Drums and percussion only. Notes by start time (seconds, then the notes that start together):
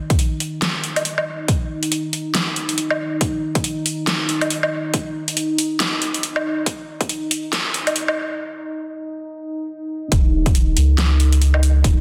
0.10 kick, closed hi-hat
0.19 closed hi-hat
0.40 closed hi-hat
0.62 snare, closed hi-hat
0.84 closed hi-hat
0.96 closed hi-hat, low woodblock
1.05 closed hi-hat
1.18 low woodblock
1.48 kick, closed hi-hat
1.83 closed hi-hat
1.92 closed hi-hat
2.13 closed hi-hat
2.35 snare, closed hi-hat
2.56 closed hi-hat
2.69 closed hi-hat
2.78 closed hi-hat
2.90 low woodblock
3.21 kick, closed hi-hat
3.55 kick, closed hi-hat
3.64 closed hi-hat
3.86 open hi-hat
4.07 snare, closed hi-hat
4.29 closed hi-hat
4.41 closed hi-hat, low woodblock
4.50 closed hi-hat
4.63 low woodblock
4.94 kick, closed hi-hat
5.28 closed hi-hat
5.37 closed hi-hat
5.58 open hi-hat
5.80 snare, closed hi-hat
6.02 closed hi-hat
6.14 closed hi-hat
6.23 closed hi-hat
6.36 low woodblock
6.66 kick, closed hi-hat
7.01 kick, closed hi-hat
7.09 closed hi-hat
7.31 open hi-hat
7.53 snare, closed hi-hat
7.74 closed hi-hat
7.87 closed hi-hat, low woodblock
7.96 closed hi-hat
8.08 low woodblock
10.12 kick, closed hi-hat
10.46 kick, closed hi-hat
10.55 closed hi-hat
10.77 closed hi-hat
10.98 snare, closed hi-hat
11.20 closed hi-hat
11.33 closed hi-hat
11.42 closed hi-hat
11.54 low woodblock
11.63 open hi-hat
11.84 kick, closed hi-hat